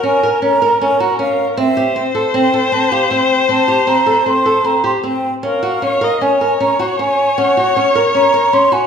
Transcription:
Already playing: A#4
0.03 C#4 G#5
0.23 A#4
0.42 C#4 A#5
0.62 A#4
0.81 C#4 G#5
1.00 F#4 A#5
1.19 C#4 F5
1.57 C4 C5 E5
1.77 G4
1.96 C4
2.15 A4
2.34 C4 G5
2.54 A4
2.72 C4 A5
2.92 G4 F5
3.11 C4 G5
3.49 C4 A5
3.68 G4
3.87 C4 A#5
4.06 A4
4.26 C4 C6
4.46 A4
4.64 C4 A#5
4.84 G4 C6
5.03 C4 G5
5.43 C#4 A#4 F5
5.63 F#4
5.82 C#4 C#5
6.01 A#4 D#5
6.21 C#4 C#5 G#5
6.41 A#4
6.60 C#4 A#5
6.79 F#4 F#5
6.99 C#4 G#5
7.38 C#4 F#5
7.57 F#4
7.76 C#4
7.95 A#4
8.15 C#4 A#5
8.34 A#4
8.53 C#4 C6
8.72 F#4 G#5

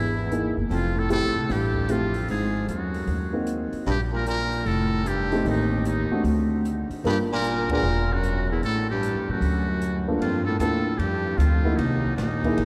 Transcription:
Already playing: G#1 E2 E4
0.31 A#3 D#4 E4 G#4, closed hi-hat
0.57 F#1
0.70 F1 F2 F4, open hi-hat
0.96 A2 A4
1.10 A2 A3 C4 E4 G4 A4, closed hi-hat
1.24 A1
1.36 C2
1.49 A1 G2 G4, snare, open hi-hat
1.75 kick
1.89 F2 A3 C4 E4 F4 G4, closed hi-hat
2.14 open hi-hat
2.28 G#1 G#2 G#4, open hi-hat
2.68 D#2 F#2 F#4, closed hi-hat
2.94 open hi-hat
3.07 D#2, open hi-hat
3.33 A#3 C4 D#4 F#4
3.47 closed hi-hat
3.72 muted upright bass stroke, open hi-hat
3.86 A#1 G2, open hi-hat
3.90 G4
4.12 A#2 A#4
4.26 A#2 A#4, closed hi-hat
4.52 open hi-hat
4.65 F1 A2 A4, open hi-hat
5.05 G2 G4, closed hi-hat
5.32 A3 C4 D#4 G4, open hi-hat
5.45 A1 D#2, open hi-hat
5.49 D#4
5.84 D#2 D#4, closed hi-hat
6.10 A3 C4 D4 F#4, muted upright bass stroke
6.24 D2, open hi-hat
6.65 closed hi-hat
6.90 muted upright bass stroke, open hi-hat
7.04 G1 G2 A#3 D4 F4 A#4, open hi-hat
7.08 G4
7.32 A#2 A#4
7.44 closed hi-hat
7.69 A#2 B3 D4 F#4 G#4 A#4, kick, ride
7.83 E1
8.12 F#2 F#4
8.23 closed hi-hat
8.52 E2 E4
8.62 A1 A2 A4, open hi-hat
8.91 G2 G4
9.03 closed hi-hat
9.15 D#2
9.29 F#2 A2 F#4
9.41 D2, open hi-hat
9.82 closed hi-hat
10.08 G2 A#3 D4 F4 A4
10.20 F2 G2 F4, ride
10.45 A2 A4
10.59 D#2 A2 A#3 D4 F4 A4, hi-hat pedal, ride
10.99 F2 G2 G4, ride
11.37 D2 F2 F4, hi-hat pedal, ride
11.64 A#3 D#4 E4 F#4
11.77 C2 D#2 D#4, ride
12.16 A#1 D#2 D#4, snare, hi-hat pedal, ride
12.44 A#3 D#4 E4 G#4, kick, ride
12.57 G#1, ride

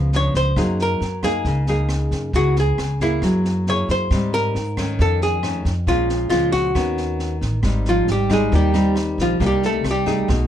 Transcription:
Already playing: C#2 C#3
0.13 F3 B3 D4 C#5, snare
0.34 C#2 C5, kick, snare
0.56 F#2 F#3 A#3 D#4 G#4, kick, cross-stick, snare
0.79 A#4, snare
1.00 F#2, snare
1.23 A#3 D#4 G#4, kick, cross-stick, snare
1.45 C#2 C#3, kick, snare
1.66 A#3 D#4 G#4, snare
1.89 cross-stick, snare
2.11 F#2, kick, snare
2.33 C#2 C#3 B3 E4 F#4 G#4, kick, snare
2.56 G#4, snare
2.78 C#2, cross-stick, snare
3.00 A#3 E4 G#4, kick, snare
3.22 F#2 F#3, kick, cross-stick, snare
3.45 snare
3.66 A#3 E4 G#4 C#5, snare
3.88 F#2 C5, kick, snare
4.10 G#2 G3 C4 D#4, kick, cross-stick, snare
4.33 A#4, snare
4.55 G#2, snare
4.77 D#3 A3 C#4, kick, cross-stick, snare
4.99 F2 A4, kick, snare
5.21 G#4, snare
5.43 D#3 A3 C#4, cross-stick, snare
5.65 F2, kick, snare
5.87 A#1 A#2 F3 G#3 C#4 F4, kick, snare
6.09 snare
6.30 C#2 F3 G#3 C#4 F4, cross-stick, snare
6.52 F#4, kick, snare
6.75 D#2 D#3 B3 C#4, kick, cross-stick, snare
6.97 snare
7.19 snare
7.41 A1, kick, snare
7.63 G#1 G#2 G3 C4 D#4, kick, cross-stick, snare
7.85 F4, snare
7.90 F3
8.07 G#1, snare
8.12 G3 G4
8.30 G3 G#3 C4 D#4 G#4, kick, cross-stick, snare
8.52 D#2 D#3 G3 G4, kick, snare
8.74 G3 C4 D#4, snare
8.96 cross-stick, snare
9.18 A#1 F3 F4, kick, snare
9.40 C2 C3 G3 A#3 D#4, kick, snare
9.46 G3 G4
9.62 A4, snare
9.67 A3
9.84 C2, cross-stick, snare
9.91 G3 G4
10.06 A3 D#4 G#4, kick, snare
10.28 B1 B2, kick, cross-stick, snare

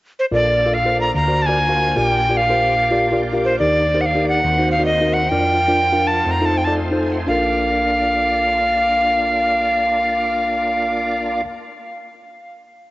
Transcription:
0.19 C5
0.31 A#1 A#2 A#3 D4 F4 A4 A#4 D5
0.66 F4 A4 A#4 F5
0.74 F5
0.85 F4 A4 A#4 C5
1.01 A#5
1.15 D2 D3 F#4 C5 A#5
1.28 F#4 A#4 C5 D5
1.42 G#5 A5
1.48 F#4 A#4 C5 D5
1.69 F#4 A#4 C5 F5
1.96 A#1 A#2 F4 G4 A#4 D5 G5
2.29 F4 G4 A#4 D5
2.37 F5
2.50 F4 G4 A#4 C5
2.91 F4 G4 A#4 D5
3.12 F4 G4 A#4 D5
3.33 F4 G4 A#4 F5
3.45 C5
3.59 D#2 D#3 D#4 G4 A#4 D5
3.94 D#4 G4 A#4 C5
4.01 F#5
4.06 F5
4.15 D#4 G4 A#4 D5
4.29 F#5
4.43 D#2 D#3 C4 F#4 C5
4.58 D#4 F#4 A#4 C5
4.71 F5
4.79 D#4 F#4 A#4 D5
4.86 D#5
5.01 D#4 F#4 A#4 D#5
5.13 F#5
5.29 F2 F3 D4 F4 A#4 D5 G5
5.68 D4 F4 A#4 D5
5.92 D4 F4 A#4 F5
6.07 A5
6.24 F2 A3 C4 D#4 C5
6.31 A#5
6.41 D#4 F4 A4 C5
6.45 A5
6.57 G5
6.64 D#4 F4 A4 D5 A5
6.91 D#4 F4 A4 C5
7.27 A#1 A#3 D4 F4 A4 A#4 D5 F5

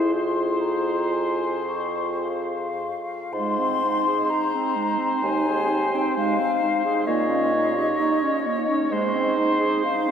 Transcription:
Already playing: F2 E4 G#4 C5
0.13 F4 G#4 C5 C6
0.61 A#5
1.13 G#5
1.67 C#6
2.23 F5
3.33 G#2 G#3 D#4 C5 C6
3.60 C4
3.84 D#4
4.07 G#4
4.30 D#4 A#5
4.55 C4
4.76 G#3
4.99 C4
5.23 D#2 D#4 G#5
5.47 G#4
5.70 D#4
5.95 C4 G5
6.17 G#3 F5
6.40 C4
6.63 D#4
6.85 G#4
7.07 A#2 A#3 C#5 D#5
7.30 C#4
7.53 D#4
7.76 G4
7.99 D#4
8.23 C#4
8.46 A#3
8.68 C#4
8.91 G#2 G#3 D#4 C5
9.15 C4
9.37 D#4
9.60 G#4
9.84 D#4 F5
10.08 C4

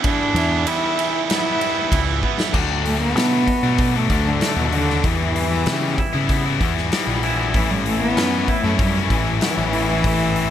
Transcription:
Already playing: G3 B3 E4
0.04 E2 E3 G3 B3 D4 E4, kick, ride
0.34 E2 E3 G3 B3, ride
0.38 E4
0.52 G3 B3 E4
0.66 E3 G3 B3 E4, ride
0.83 G3 B3 E4
0.98 E3 G3 B3 E4, ride
1.28 B3 E4, snare, ride
1.45 G3 B3 E4
1.60 E3 G3 B3 E4, ride
1.75 G3 B3 E4
1.91 C#2 E3 G3 B3 E4, kick, ride
2.22 E3 G3 B3 E4, kick
2.38 G3 B3 E4, snare
2.53 D2 D3 F#3 A3 D4, kick, crash
2.85 D3 A3, open hi-hat
3.02 B3
3.16 B2 D3 F#3 A3 D4, snare, open hi-hat
3.31 F#3 A3 D4
3.47 F#4, muted distorted electric guitar stroke, kick, open hi-hat
3.63 B2 F#3 A3 D4
3.78 D4, kick, open hi-hat
3.94 F#3 A3 D4
4.10 D2 D3 F#3 A3 D4, kick, open hi-hat
4.27 D3
4.41 D3 F#3 A3 D4, snare, open hi-hat
4.56 D#2 B2 F#3 A3 D4
4.72 D3 F#3 A3 D4 F#4, open hi-hat
4.89 F#3 A3 D4, snare
5.04 E2 E3 G3 B3 E4, kick, open hi-hat
5.36 E3, open hi-hat
5.66 C#3 E3 G3 B3 E4, snare, open hi-hat
5.82 G3 B3 E4
5.98 E4, muted distorted electric guitar stroke, kick, open hi-hat
6.13 C#3 G3 B3 E4
6.29 B3, kick, open hi-hat
6.45 G3 B3 E4
6.60 E2 E3 G3 B3 E4, kick, open hi-hat
6.77 snare
6.91 E3 G3 B3 E4, snare, open hi-hat
7.07 A#1 G3 B3 E4
7.23 E3 G3 B3 E4, open hi-hat
7.38 G3 B3 E4
7.54 A1 A2 E3 A3 C#4 E4, kick, open hi-hat
7.70 G3
7.86 E3 A3, open hi-hat
8.01 B3
8.16 F#2 A2 E3 A3 B3 C#4 E4, snare, open hi-hat
8.32 A3 C#4 E4
8.48 E4, muted distorted electric guitar stroke, kick, open hi-hat
8.64 F#2 A3 C#4 E4
8.79 G3 C#4, kick, open hi-hat
8.95 A3 C#4 E4
9.10 A1 E3 A3 C#4 E4, kick, open hi-hat
9.41 A2 E3 A3 B3 C#4 E4, snare, open hi-hat
9.57 A1 A3 C#4 E4
9.73 E3 A3 C#4 E4, open hi-hat
9.89 A3 C#4 E4
10.04 A1 A2 E3 A3 C#4 E4, kick, open hi-hat
10.35 E3, open hi-hat

